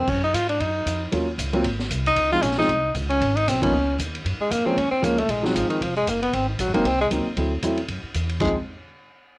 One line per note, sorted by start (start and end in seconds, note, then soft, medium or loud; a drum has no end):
0.00 0.11 C4 medium
0.07 0.33 F#2 medium
0.07 0.23 C#4 medium
0.07 kick medium
0.07 crash medium
0.24 0.36 D#4 medium
0.34 0.59 G#2 medium
0.34 0.49 F4 medium
0.34 kick soft
0.34 hi-hat pedal medium
0.34 ride medium
0.49 0.63 D4 medium
0.49 ride soft
0.60 0.85 F#2 medium
0.60 1.13 D#4 medium
0.60 kick soft
0.60 ride medium
0.86 1.11 F2 medium
0.86 kick soft
0.86 hi-hat pedal medium
0.86 ride medium
1.12 1.38 D#2 medium
1.12 1.25 F#3 medium
1.12 1.25 A#3 medium
1.12 1.26 C#4 medium
1.12 1.26 F4 medium
1.12 kick soft
1.12 ride medium
1.38 1.63 C#2 medium
1.38 kick soft
1.38 hi-hat pedal medium
1.38 ride medium
1.53 1.63 F#3 medium
1.53 1.63 A#3 medium
1.53 1.63 C4 medium
1.53 1.64 F4 medium
1.53 ride soft
1.64 1.89 G#1 medium
1.64 kick soft
1.64 ride medium
1.79 snare soft
1.90 2.15 C2 medium
1.90 kick soft
1.90 hi-hat pedal medium
1.90 ride medium
2.06 2.31 D#4 loud
2.06 ride soft
2.16 2.41 C#2 medium
2.16 kick soft
2.16 ride medium
2.32 2.42 F3 medium
2.32 2.42 G#3 medium
2.32 2.42 C4 medium
2.32 2.42 D#4 medium
2.32 2.44 F4 medium
2.42 2.67 A#1 medium
2.42 2.57 C#4 medium
2.42 kick soft
2.42 hi-hat pedal medium
2.42 ride medium
2.51 snare soft
2.58 2.67 F3 medium
2.58 2.68 G#3 medium
2.58 2.68 C4 medium
2.58 2.92 D#4 medium
2.58 2.68 D#4 medium
2.58 snare soft
2.68 2.94 C2 medium
2.68 kick soft
2.68 ride medium
2.94 3.20 C#2 medium
2.94 kick soft
2.94 hi-hat pedal medium
2.94 ride medium
3.10 3.38 C#4 medium
3.10 ride soft
3.21 3.46 G#1 medium
3.21 kick soft
3.21 ride medium
3.36 3.51 D#4 loud
3.36 ride soft
3.46 3.71 B1 medium
3.46 3.63 C4 medium
3.46 kick soft
3.46 snare soft
3.46 hi-hat pedal medium
3.46 ride medium
3.62 3.72 F3 medium
3.62 3.72 A#3 medium
3.62 3.72 B3 medium
3.62 3.97 C#4 medium
3.62 3.72 D#4 medium
3.62 kick medium
3.62 ride medium
3.72 3.97 C#2 medium
3.99 4.24 D#2 medium
3.99 kick soft
3.99 hi-hat pedal medium
3.99 ride medium
4.15 ride soft
4.25 4.38 F#2 medium
4.25 kick soft
4.25 ride medium
4.39 4.54 G#3 medium
4.39 muted upright bass stroke soft
4.50 4.64 F2 medium
4.50 4.67 A#3 medium
4.50 kick soft
4.50 hi-hat pedal medium
4.50 ride medium
4.65 4.75 F3 medium
4.65 4.76 G#3 medium
4.65 4.76 A#3 medium
4.65 4.80 C4 medium
4.65 4.76 C#4 medium
4.65 muted upright bass stroke soft
4.76 4.90 D#2 medium
4.76 4.91 C#4 medium
4.76 kick soft
4.76 ride medium
4.91 5.05 C4 medium
4.91 muted upright bass stroke soft
5.02 5.28 C#2 medium
5.02 5.16 F3 medium
5.02 5.16 G#3 medium
5.02 5.16 A#3 medium
5.02 5.21 A#3 medium
5.02 5.16 C#4 medium
5.02 kick soft
5.02 hi-hat pedal medium
5.02 ride medium
5.18 5.32 A3 medium
5.18 ride soft
5.28 5.54 A#1 medium
5.28 5.46 G#3 medium
5.28 kick soft
5.28 ride medium
5.43 5.78 F3 medium
5.43 5.57 F#3 medium
5.43 5.78 G#3 medium
5.43 5.78 C4 medium
5.43 5.79 D#4 medium
5.43 snare soft
5.54 5.68 G#1 medium
5.54 5.69 F3 medium
5.54 kick soft
5.54 hi-hat pedal medium
5.54 ride medium
5.68 5.84 D#3 medium
5.68 muted upright bass stroke soft
5.68 ride soft
5.81 6.06 F1 medium
5.81 5.96 F3 medium
5.81 kick soft
5.81 ride medium
5.97 6.11 G#3 medium
6.07 6.32 F#1 medium
6.07 6.22 A#3 medium
6.07 kick soft
6.07 hi-hat pedal medium
6.07 ride medium
6.23 6.36 B3 medium
6.23 ride soft
6.33 6.58 G#1 medium
6.33 6.48 C4 medium
6.33 kick soft
6.33 ride medium
6.49 6.62 D#3 soft
6.59 6.67 A#1 medium
6.59 6.74 F#3 medium
6.59 kick soft
6.59 hi-hat pedal medium
6.59 ride medium
6.67 6.75 G#1 medium
6.74 6.84 F#1 medium
6.74 6.84 F#3 medium
6.74 6.84 A#3 medium
6.74 6.87 A#3 medium
6.74 6.84 C4 medium
6.74 6.84 D#4 medium
6.74 ride soft
6.84 7.10 C2 medium
6.84 7.00 C4 medium
6.84 kick soft
6.84 ride medium
7.01 7.07 G#3 medium
7.10 7.24 C#2 medium
7.10 7.24 F#3 medium
7.10 7.24 A#3 medium
7.10 7.24 C4 medium
7.10 7.25 D#4 medium
7.10 kick soft
7.10 hi-hat pedal soft
7.10 ride medium
7.26 muted upright bass stroke soft
7.37 7.62 D2 medium
7.37 7.50 F#3 medium
7.37 7.50 A3 soft
7.37 7.50 C4 soft
7.37 7.51 E4 medium
7.37 kick soft
7.37 ride medium
7.62 7.88 E2 medium
7.62 7.76 F#3 medium
7.62 7.76 A3 medium
7.62 7.77 C4 medium
7.62 7.77 E4 medium
7.62 kick soft
7.62 hi-hat pedal medium
7.62 ride medium
7.77 ride soft
7.88 8.02 F#2 medium
7.88 kick soft
7.88 ride medium
8.03 muted upright bass stroke soft
8.14 8.40 E2 medium
8.14 kick soft
8.14 hi-hat pedal medium
8.14 ride medium
8.29 ride soft
8.40 8.54 C#2 medium
8.40 8.54 F3 medium
8.40 8.54 G#3 medium
8.40 8.55 G#3 medium
8.40 8.54 C4 medium
8.40 8.54 D#4 medium
8.40 kick medium
8.40 floor tom medium
8.40 crash medium